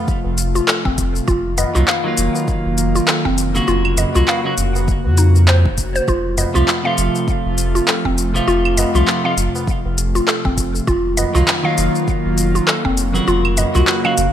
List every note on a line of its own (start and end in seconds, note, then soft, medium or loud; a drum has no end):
0.00 1.24 C3 medium
0.00 1.24 F3 medium
0.00 1.24 A3 medium
0.00 3.64 F4 medium
0.08 kick loud
0.08 shaker soft
0.24 0.60 F1 loud
0.24 tabla tin medium
0.38 closed hi-hat medium
0.38 shaker medium
0.55 0.67 F4 medium
0.55 tabla tin medium
0.55 shaker soft
0.68 0.78 A4 medium
0.68 clap loud
0.68 shaker soft
0.85 1.20 F1 loud
0.85 1.26 C4 loud
0.85 kick loud
0.98 kick medium
0.98 closed hi-hat medium
0.98 shaker medium
1.16 shaker soft
1.28 1.65 F1 loud
1.28 3.65 D#3 medium
1.28 6.04 A#3 medium
1.28 1.56 F4 loud
1.28 kick loud
1.28 shaker soft
1.58 1.74 D#5 medium
1.58 closed hi-hat medium
1.58 tabla na medium
1.58 tabla ge medium
1.58 shaker medium
1.75 1.83 C2 loud
1.75 1.88 D#3 medium
1.75 1.88 F#3 medium
1.75 1.89 A#3 medium
1.75 1.87 F4 medium
1.75 1.89 F4 medium
1.75 shaker soft
1.88 2.46 F5 loud
1.88 clap loud
1.88 tabla na medium
1.88 shaker soft
2.04 3.50 D#3 medium
2.04 3.51 F#3 medium
2.04 3.52 A#3 medium
2.08 3.52 F4 medium
2.17 2.29 F1 medium
2.17 closed hi-hat loud
2.17 shaker medium
2.35 tabla na medium
2.35 tabla tin soft
2.35 shaker soft
2.48 kick loud
2.48 shaker soft
2.65 3.00 F1 loud
2.78 closed hi-hat medium
2.78 shaker medium
2.95 3.07 F4 medium
2.95 shaker medium
3.08 3.18 A4 medium
3.08 clap loud
3.08 shaker soft
3.25 3.60 F1 loud
3.25 3.66 C4 loud
3.25 kick medium
3.38 closed hi-hat medium
3.38 shaker medium
3.55 4.11 C#3 medium
3.55 4.11 F#3 medium
3.55 4.11 A#3 medium
3.55 4.12 F#4 loud
3.55 tabla tin soft
3.55 shaker soft
3.68 4.05 F1 medium
3.68 6.06 C#3 medium
3.68 3.96 F4 loud
3.68 6.06 F#4 medium
3.68 shaker soft
3.85 claves medium
3.97 4.14 D#5 medium
3.97 closed hi-hat medium
3.97 tabla na medium
3.97 tabla ge medium
3.97 shaker medium
4.15 4.23 C2 loud
4.15 4.41 C#3 medium
4.15 4.41 F#3 medium
4.15 4.41 A#3 medium
4.15 4.27 F4 medium
4.15 4.42 F#4 medium
4.15 shaker medium
4.28 4.87 F5 loud
4.28 clap medium
4.28 tabla na medium
4.28 shaker soft
4.44 4.53 C#3 medium
4.44 4.53 F#3 medium
4.44 4.53 A#3 medium
4.44 4.54 F#4 loud
4.58 5.07 F1 medium
4.58 closed hi-hat medium
4.58 tabla ge medium
4.58 shaker medium
4.75 tabla na medium
4.75 shaker soft
4.88 kick loud
4.88 shaker soft
5.04 5.67 F2 loud
5.04 tabla tin medium
5.17 5.34 D#4 medium
5.17 closed hi-hat medium
5.17 shaker medium
5.35 tabla tin soft
5.35 shaker soft
5.48 5.64 C5 loud
5.48 clap loud
5.48 shaker soft
5.65 6.01 F1 medium
5.65 kick loud
5.78 kick medium
5.78 closed hi-hat medium
5.78 shaker medium
5.96 6.07 C5 loud
5.96 shaker soft
6.08 6.45 F1 medium
6.08 10.84 C3 medium
6.08 10.84 F3 medium
6.08 10.84 A3 medium
6.08 6.37 F4 loud
6.08 10.84 F4 medium
6.08 kick loud
6.08 shaker soft
6.37 6.54 D#5 medium
6.37 closed hi-hat medium
6.37 tabla na medium
6.37 tabla ge medium
6.37 shaker medium
6.54 6.63 C2 medium
6.54 6.68 C3 medium
6.54 6.68 F3 medium
6.54 6.68 A3 medium
6.54 6.67 F4 medium
6.54 6.69 F4 medium
6.54 shaker soft
6.68 clap medium
6.68 tabla na medium
6.68 shaker soft
6.83 8.30 C3 medium
6.83 8.31 F3 medium
6.83 8.31 A3 medium
6.83 8.32 F4 medium
6.83 7.43 F5 loud
6.98 7.09 F1 medium
6.98 closed hi-hat medium
6.98 shaker medium
7.15 tabla na medium
7.15 tabla tin soft
7.15 shaker soft
7.28 kick loud
7.28 shaker soft
7.45 7.80 F1 loud
7.58 closed hi-hat medium
7.58 shaker medium
7.75 7.87 F4 medium
7.75 shaker soft
7.88 7.98 A4 medium
7.88 clap medium
7.88 shaker soft
8.05 8.40 F1 loud
8.05 8.46 C4 loud
8.05 kick medium
8.18 closed hi-hat medium
8.18 shaker medium
8.34 8.91 C3 medium
8.34 8.91 F3 medium
8.34 8.91 A3 medium
8.34 8.92 F4 medium
8.34 tabla tin medium
8.34 shaker soft
8.47 8.85 F1 medium
8.47 8.76 F4 loud
8.47 shaker soft
8.65 claves medium
8.77 8.93 D#5 medium
8.77 closed hi-hat medium
8.77 tabla na medium
8.77 tabla ge medium
8.77 shaker medium
8.94 9.03 C2 loud
8.94 9.20 C3 medium
8.94 9.21 F3 medium
8.94 9.21 A3 medium
8.94 9.07 F4 medium
8.94 9.21 F4 medium
8.94 shaker soft
9.08 clap medium
9.08 tabla na medium
9.08 shaker soft
9.24 9.33 C3 medium
9.24 9.33 F3 medium
9.24 9.33 A3 medium
9.24 9.34 F4 loud
9.24 9.83 F5 loud
9.37 9.48 F1 medium
9.37 closed hi-hat medium
9.37 tabla ge medium
9.37 shaker medium
9.55 tabla na medium
9.55 shaker soft
9.67 kick loud
9.67 shaker soft
9.85 10.20 F1 loud
9.85 tabla tin medium
9.98 closed hi-hat medium
9.98 shaker medium
10.15 10.27 F4 medium
10.15 tabla tin soft
10.15 shaker soft
10.28 10.38 A4 medium
10.28 clap medium
10.28 shaker soft
10.45 10.80 F1 loud
10.45 10.86 C4 loud
10.45 kick loud
10.57 kick medium
10.57 closed hi-hat medium
10.57 shaker medium
10.75 shaker soft
10.87 11.25 F1 loud
10.87 13.25 D#3 medium
10.87 14.33 F#3 medium
10.87 13.25 A#3 medium
10.87 11.16 F4 loud
10.87 13.25 F4 medium
10.87 kick loud
10.87 shaker soft
11.17 11.33 D#5 medium
11.17 closed hi-hat medium
11.17 tabla na medium
11.17 tabla ge medium
11.17 shaker medium
11.34 11.43 C2 loud
11.34 11.48 D#3 medium
11.34 11.48 F#3 medium
11.34 11.48 A#3 medium
11.34 11.47 F4 medium
11.34 11.49 F4 medium
11.34 shaker soft
11.48 clap loud
11.48 tabla na medium
11.48 shaker soft
11.63 13.10 D#3 medium
11.63 13.11 F#3 medium
11.63 13.11 A#3 medium
11.63 12.23 F5 loud
11.67 13.12 F4 medium
11.78 11.89 F1 medium
11.78 closed hi-hat loud
11.78 shaker medium
11.95 tabla na medium
11.95 tabla tin soft
11.95 shaker soft
12.08 kick medium
12.08 shaker soft
12.25 12.60 F1 loud
12.38 closed hi-hat medium
12.38 shaker medium
12.55 12.67 F4 medium
12.55 shaker soft
12.67 12.78 A4 medium
12.67 clap loud
12.67 shaker soft
12.85 13.20 F1 loud
12.85 13.26 C4 loud
12.85 kick medium
12.97 closed hi-hat loud
12.97 shaker medium
13.13 13.70 C#3 medium
13.13 13.71 F#3 medium
13.13 13.71 A#3 medium
13.13 13.71 F#4 loud
13.13 tabla tin medium
13.13 shaker soft
13.28 13.65 F1 loud
13.28 14.33 C#3 medium
13.28 14.33 A#3 medium
13.28 13.56 F4 loud
13.28 14.33 F#4 loud
13.28 shaker soft
13.45 claves medium
13.57 13.73 D#5 medium
13.57 closed hi-hat medium
13.57 tabla na medium
13.57 tabla ge medium
13.57 shaker medium
13.74 13.83 C2 loud
13.74 14.00 C#3 medium
13.74 14.01 F#3 medium
13.74 14.01 A#3 medium
13.74 13.87 F4 medium
13.74 14.01 F#4 medium
13.74 shaker soft
13.87 clap loud
13.87 tabla na medium
13.87 shaker soft
14.04 14.13 C#3 medium
14.04 14.13 F#3 medium
14.04 14.13 A#3 medium
14.04 14.14 F#4 medium
14.04 14.33 F5 loud
14.04 claves medium
14.18 14.29 F1 medium
14.18 closed hi-hat loud
14.18 tabla ge medium
14.18 shaker medium